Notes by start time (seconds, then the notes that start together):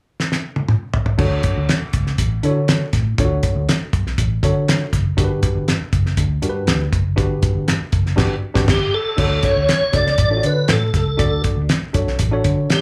0.20 snare
0.32 snare
0.56 high tom
0.68 mid tom
0.94 floor tom
1.06 floor tom
1.18 D2 D4 F#4 A4 C#5, kick, crash
1.43 kick, closed hi-hat
1.57 D2
1.69 snare, closed hi-hat
1.81 muted fingered electric bass stroke
1.93 C#2, kick, closed hi-hat
2.07 snare
2.18 A1, kick, closed hi-hat
2.43 D3 D4 E4 A4 C#5, closed hi-hat
2.50 F#4
2.68 snare, closed hi-hat
2.93 A2, kick, snare, closed hi-hat
3.18 D2 D4 F4 A4 C#5, kick, closed hi-hat
3.25 F#4
3.43 kick, closed hi-hat
3.56 D2
3.69 snare, closed hi-hat
3.81 muted fingered electric bass stroke
3.93 B1, kick, closed hi-hat
4.07 snare
4.18 A1, kick, closed hi-hat
4.43 D3 D4 F#4 A4 C#5, kick, closed hi-hat
4.68 snare, closed hi-hat
4.93 F#1, kick, snare, closed hi-hat
5.17 G1 D4 F#4 G4 A#4, kick, closed hi-hat
5.24 B4
5.43 kick, closed hi-hat
5.55 G1
5.68 snare, closed hi-hat
5.80 muted fingered electric bass stroke
5.93 F#1, kick, closed hi-hat
6.06 snare
6.17 D2, kick, closed hi-hat
6.42 G2 D4 F#4 G4 A#4, closed hi-hat
6.50 B4
6.67 D2, snare, closed hi-hat
6.93 F#1, kick, closed hi-hat
7.16 G1 D4 F#4 G4 B4, kick, closed hi-hat
7.42 kick, closed hi-hat
7.55 G1
7.68 snare, closed hi-hat
7.81 muted fingered electric bass stroke
7.92 F#1, kick, closed hi-hat
8.06 snare
8.16 G1 D4 F#4 G4 B4, kick, snare, crash
8.54 G1 D4 F#4 G4 B4, kick, snare
8.68 G1 G4, kick, snare, crash
8.94 A4
9.17 D2 D4 F#4 A4 C#5, kick, crash
9.43 C#5, kick, closed hi-hat
9.56 D2
9.69 snare, closed hi-hat
9.82 muted fingered electric bass stroke
9.92 C#2 D4 F#4 A4 C#5 D5, kick, snare, closed hi-hat
10.07 snare
10.18 A1, kick, closed hi-hat
10.30 D4 F4 A4 C#5
10.37 F#4
10.43 D3 B4, closed hi-hat
10.68 A2, snare, closed hi-hat
10.72 A4
10.94 C#2 A4, kick, snare, closed hi-hat
11.17 D2 D4 F#4 A4 D5, kick, closed hi-hat
11.44 kick, closed hi-hat
11.57 D2
11.69 snare, closed hi-hat
11.82 muted fingered electric bass stroke
11.93 B1 D4 F#4 A4 C#5, kick, closed hi-hat
12.08 snare
12.19 A1, kick, closed hi-hat
12.31 D4 F#4 A4 C#5
12.44 D3, kick, closed hi-hat
12.70 G4, snare, closed hi-hat